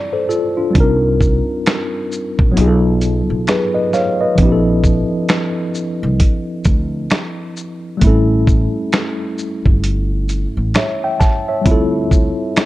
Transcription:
Already playing: tine electric piano G3 C4 D5
0.13 tine electric piano A4 C5
0.29 tine electric piano F4 A4, shaker
0.57 tine electric piano D4 F4
0.70 tine electric piano G3 C4
0.75 upright bass C2, tine electric piano D4 D#4, kick, closed hi-hat
0.80 tine electric piano A#4
1.21 kick, shaker
1.66 finger snap, snare, closed hi-hat
2.12 shaker
2.39 upright bass A#1, kick
2.52 tine electric piano F#3 B3
2.56 upright bass B1, tine electric piano D#4 F4, closed hi-hat
2.61 tine electric piano G#4
2.68 tine electric piano A4
3.01 closed hi-hat, shaker
3.30 upright bass B1
3.47 tine electric piano G#4 B4, finger snap, snare, closed hi-hat
3.75 tine electric piano B4 D#5
3.93 tine electric piano C#5 F5, snare, shaker
4.21 tine electric piano B4 D#5
4.36 upright bass A#1, tine electric piano F3 C4, kick, closed hi-hat
4.40 tine electric piano D4 E4
4.45 tine electric piano G4
4.52 tine electric piano A4
4.84 kick, shaker
5.29 finger snap, snare, closed hi-hat
5.75 shaker
6.03 upright bass C2
6.20 kick, closed hi-hat
6.65 upright bass D2, kick, closed hi-hat, shaker
7.10 finger snap, snare, closed hi-hat
7.57 shaker
7.97 tine electric piano G3 A3
8.01 upright bass A1, tine electric piano C4 E4, kick, closed hi-hat
8.07 tine electric piano C#4 A4
8.47 kick, shaker
8.92 finger snap, snare, closed hi-hat
9.38 shaker
9.66 upright bass G1, kick
9.84 closed hi-hat
10.29 closed hi-hat, shaker
10.57 upright bass A1
10.74 tine electric piano C#5 E5, finger snap, snare, closed hi-hat
11.04 tine electric piano E5 G5
11.20 tine electric piano A5, kick, snare, shaker
11.48 tine electric piano C#5 E5
11.62 tine electric piano G3 C4
11.66 upright bass D2, tine electric piano E4 F4, kick, closed hi-hat
11.71 tine electric piano A4
12.11 kick, shaker
12.56 finger snap, snare, closed hi-hat

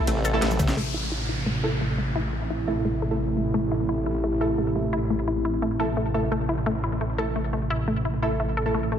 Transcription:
Already playing: analog synth pad C3 A3 C4
0.07 wobble bass A1, synth arpeggio sound A3, closed hi-hat, ride, ride bell
0.16 snare
0.25 synth arpeggio sound A4, closed hi-hat, ride, ride bell, cabasa
0.33 synth stab A3 E4 A4, snare
0.42 wobble bass A1, synth arpeggio sound A3, snare, closed hi-hat, ride, ride bell
0.51 high tom, cabasa
0.59 synth arpeggio sound A3, kick, snare, open hi-hat, mid tom, ride, ride bell, cabasa
0.68 snare, cabasa
0.77 detuned saw bass A1, analog synth pad C3 A3 E4, synth arpeggio sound A3, downlifter
0.94 synth arpeggio sound E4
1.12 synth arpeggio sound E4
1.29 synth arpeggio sound E4
1.46 synth arpeggio sound A3
1.64 synth stab A3 E4 A4, synth arpeggio sound A4
1.81 synth arpeggio sound A3
1.98 synth arpeggio sound A3
2.16 synth arpeggio sound E4
2.33 synth arpeggio sound A3
2.50 synth arpeggio sound E4
2.68 synth stab A3 E4 A4, synth arpeggio sound E4
2.85 synth arpeggio sound A3
3.02 synth arpeggio sound A4
3.11 synth stab A3 E4 A4
3.20 synth arpeggio sound A3
3.37 synth arpeggio sound A3
3.54 synth arpeggio sound A3
3.72 synth arpeggio sound E4
3.89 synth arpeggio sound E4
4.06 synth arpeggio sound E4
4.24 synth arpeggio sound A3
4.41 synth stab A3 E4 A4, synth arpeggio sound A4
4.58 synth arpeggio sound A3
4.76 synth arpeggio sound A3
4.93 synth arpeggio sound E4
5.10 synth arpeggio sound A3
5.28 synth arpeggio sound E4
5.45 synth arpeggio sound E4
5.62 synth arpeggio sound A3
5.80 synth stab A3 E4 A4, synth arpeggio sound A4
5.97 synth arpeggio sound A3
6.14 synth arpeggio sound A3, synth stab A3 E4 A4
6.32 detuned saw bass A1, synth arpeggio sound A3
6.49 synth arpeggio sound E4
6.66 synth arpeggio sound A3
6.84 synth arpeggio sound E4
7.01 synth arpeggio sound A3
7.18 synth stab A3 E4 A4, synth arpeggio sound A4
7.36 synth arpeggio sound A3
7.53 synth arpeggio sound A3
7.70 synth arpeggio sound E4
7.88 synth arpeggio sound A3
8.05 synth arpeggio sound E4
8.22 synth stab A3 E4 A4, synth arpeggio sound E4
8.40 synth arpeggio sound A3
8.57 synth arpeggio sound A4
8.66 synth stab A3 E4 A4
8.74 synth arpeggio sound A3
8.92 synth arpeggio sound A3

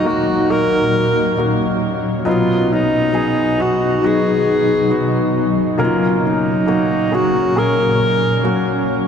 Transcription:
Already playing: grand piano D#2 D#3 F#3 A#3 D#4 F#4 A#4, ambient pad A#2 F#3 D#4
0.04 grand piano F#3 A#3 D#4 F#4, alto saxophone F#4
0.49 grand piano F#3 A#3 D#4 F#4, ambient pad C#4, alto saxophone A#4
1.37 grand piano F#3 A#3 D#4 F#4
2.25 grand piano B1 B2 F#3 B3 D#4, ambient pad B2 D#4, alto saxophone F4
2.73 alto saxophone D#4
3.13 grand piano F#3 B3 D#4 G#4
3.58 grand piano F#3 B3 D#4 F#4
3.62 alto saxophone F#4
4.02 grand piano F#3 B3 D#4 F#4
4.07 alto saxophone G#4
4.90 grand piano F#3 B3 D#4 F#4
5.78 grand piano F#1 F#2 F#3 A#3 C#4 A#4, ambient pad A#2 C#4
5.83 alto saxophone F4
6.27 alto saxophone D#4
6.67 grand piano F#3 A#3 C#4 F#4
7.11 grand piano F#3 A#3 C#4 G#4
7.15 alto saxophone F#4
7.55 grand piano F#3 A#3 C#4 G#4, alto saxophone A#4
8.43 grand piano F#3 A#3 C#4 F#4

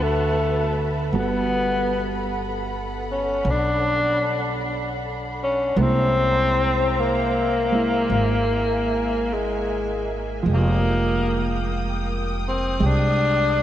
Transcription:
Already playing: upright bass D2, hollow-body jazz guitar D3 F#4 B4, string section F#4 E5 A5 B5
0.02 tenor saxophone A3
1.13 upright bass G1, hollow-body jazz guitar G3 B3 F#4 A4, string section A4 F#5
1.19 tenor saxophone B3
3.12 tenor saxophone C#4
3.45 upright bass B1
3.50 tenor saxophone D4
5.43 tenor saxophone C#4
5.76 upright bass C2, hollow-body jazz guitar G#3 A#3, tenor saxophone B3, string section E5 A#5
5.81 tenor saxophone C4, hollow-body jazz guitar E4
6.99 tenor saxophone A#3
7.72 hollow-body jazz guitar G#3 A#3 E4
8.10 upright bass G#1, string section G#5
9.34 tenor saxophone G#3
10.43 upright bass F1, hollow-body jazz guitar F3, string section G5 D#6
10.47 hollow-body jazz guitar G#3
10.54 tenor saxophone A#3, hollow-body jazz guitar G4
12.48 tenor saxophone C4
12.80 upright bass C2, hollow-body jazz guitar G#3 G4
12.86 tenor saxophone D4

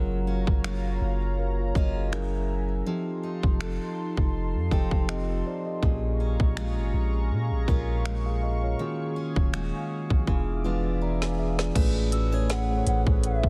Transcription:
Already playing: 808-style bass F#1, tine electric piano F#3 C#4 F4 G#4 A#4 F#5, steel-string acoustic guitar F#3 C#4 F#4, analog synth pad F#3 C#5 F5 A#5
0.27 steel-string acoustic guitar C#4
0.47 808-style bass F#1, kick
0.64 steel-string acoustic guitar A#3 C#4 F4, finger snap
1.01 808-style bass F#1
1.39 tine electric piano C#4 A#4
1.59 tine electric piano F4 C#5
1.75 808-style bass F#1, steel-string acoustic guitar A#3 C#4 F4, tine electric piano F#4 D#5, kick
1.96 tine electric piano G#4 F5
2.12 tine electric piano F#3 C#4 E4 G#4 A#4, steel-string acoustic guitar F#3, analog synth pad E5 G#5, finger snap
2.86 tine electric piano F3 C4 D#4 G4 A4, steel-string acoustic guitar F3, analog synth pad D#4 F4 A5 C6
3.23 steel-string acoustic guitar D#4
3.43 808-style bass F1, kick
3.60 steel-string acoustic guitar C4 D#4 A4, finger snap
4.17 808-style bass F1, kick
4.54 808-style bass F2
4.71 808-style bass F1, tine electric piano F3 C4 D#4 G4 A4 G5, steel-string acoustic guitar C4 D#4 A4, kick
4.91 808-style bass F1, kick
5.09 steel-string acoustic guitar C4, tine electric piano G4 D#5, finger snap
5.29 tine electric piano C4 A4
5.46 tine electric piano D#4 C5 D5
5.66 tine electric piano G4 D#5
5.83 808-style bass A#1, tine electric piano A#2 A#3 C#4 F4 G#4, steel-string acoustic guitar A#2, analog synth pad G#4 F5 A#5 C#6, kick
6.20 steel-string acoustic guitar C#4
6.40 808-style bass A#1, kick
6.57 steel-string acoustic guitar G#3 C#4 F4, finger snap
6.77 808-style bass G#1
6.94 808-style bass A#1
7.31 808-style bass A#2
7.51 808-style bass A#1
7.68 808-style bass A#1, tine electric piano A#2 A#3 C#4 F4 A#4, steel-string acoustic guitar G#3 C#4 F4, kick
8.05 steel-string acoustic guitar G#3, finger snap
8.26 tine electric piano G#4 F5
8.43 tine electric piano D#5
8.63 tine electric piano F4 C#5
8.78 steel-string acoustic guitar D#3, tine electric piano D#3 A#3 C#4 F4 F#4 G#4, analog synth pad G#4 G#5
9.16 steel-string acoustic guitar C#4
9.36 808-style bass D#1, kick
9.53 steel-string acoustic guitar G#3 C#4 F#4, finger snap
10.10 808-style bass A#1, kick
10.27 808-style bass E1, tine electric piano E3 B3 D4 F4 G#4, steel-string acoustic guitar E3, analog synth pad G#4 E5 D6, kick
10.64 tine electric piano E3 B3 D4 F4 B4, steel-string acoustic guitar G#3 D4 F4
11.01 steel-string acoustic guitar G#3, tine electric piano D5 A#5
11.22 tine electric piano G#5, snare
11.39 tine electric piano G#4 E5
11.59 tine electric piano F4 D5, snare
11.75 808-style bass A1, tine electric piano A2 A3 C#4 G#4 B4, steel-string acoustic guitar A3, analog synth pad A3 C#4 G#4 B4, kick, closed hi-hat, crash
12.12 steel-string acoustic guitar F#4, celesta E6, closed hi-hat
12.32 tine electric piano A2 A3 C#4 G#4 C#5, steel-string acoustic guitar G#4
12.50 steel-string acoustic guitar G#4, soft synth lead F#5, snare, closed hi-hat
12.69 tine electric piano A2 A3 C#4 G#4 C5
12.77 tine electric piano C#5
12.86 808-style bass A1, steel-string acoustic guitar C#4, soft synth lead F#5, closed hi-hat
13.07 808-style bass A1, kick
13.24 soft synth lead E5, closed hi-hat
13.44 808-style bass A1, kick

